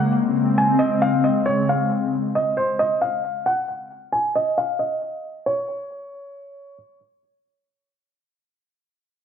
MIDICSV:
0, 0, Header, 1, 3, 480
1, 0, Start_track
1, 0, Key_signature, -5, "minor"
1, 0, Tempo, 444444
1, 138, Time_signature, 4, 2, 24, 8
1, 9986, End_track
2, 0, Start_track
2, 0, Title_t, "Felt piano"
2, 0, Program_c, 0, 0
2, 0, Note_on_c, 0, 78, 77
2, 123, Note_off_c, 0, 78, 0
2, 625, Note_on_c, 0, 80, 83
2, 850, Note_off_c, 0, 80, 0
2, 852, Note_on_c, 0, 75, 78
2, 1083, Note_off_c, 0, 75, 0
2, 1099, Note_on_c, 0, 77, 90
2, 1327, Note_off_c, 0, 77, 0
2, 1338, Note_on_c, 0, 75, 78
2, 1566, Note_off_c, 0, 75, 0
2, 1573, Note_on_c, 0, 73, 81
2, 1804, Note_off_c, 0, 73, 0
2, 1827, Note_on_c, 0, 77, 72
2, 2051, Note_off_c, 0, 77, 0
2, 2541, Note_on_c, 0, 75, 71
2, 2768, Note_off_c, 0, 75, 0
2, 2775, Note_on_c, 0, 72, 75
2, 3005, Note_off_c, 0, 72, 0
2, 3016, Note_on_c, 0, 75, 90
2, 3245, Note_off_c, 0, 75, 0
2, 3256, Note_on_c, 0, 77, 75
2, 3708, Note_off_c, 0, 77, 0
2, 3737, Note_on_c, 0, 78, 79
2, 3965, Note_off_c, 0, 78, 0
2, 4454, Note_on_c, 0, 80, 71
2, 4684, Note_off_c, 0, 80, 0
2, 4703, Note_on_c, 0, 75, 80
2, 4929, Note_off_c, 0, 75, 0
2, 4943, Note_on_c, 0, 77, 83
2, 5169, Note_off_c, 0, 77, 0
2, 5175, Note_on_c, 0, 75, 72
2, 5853, Note_off_c, 0, 75, 0
2, 5899, Note_on_c, 0, 73, 84
2, 7295, Note_off_c, 0, 73, 0
2, 9986, End_track
3, 0, Start_track
3, 0, Title_t, "Analog synth pad"
3, 0, Program_c, 1, 89
3, 0, Note_on_c, 1, 49, 78
3, 0, Note_on_c, 1, 56, 74
3, 0, Note_on_c, 1, 58, 85
3, 119, Note_off_c, 1, 58, 0
3, 138, Note_on_c, 1, 60, 85
3, 2015, Note_off_c, 1, 56, 0
3, 2020, Note_off_c, 1, 49, 0
3, 2039, Note_off_c, 1, 60, 0
3, 9986, End_track
0, 0, End_of_file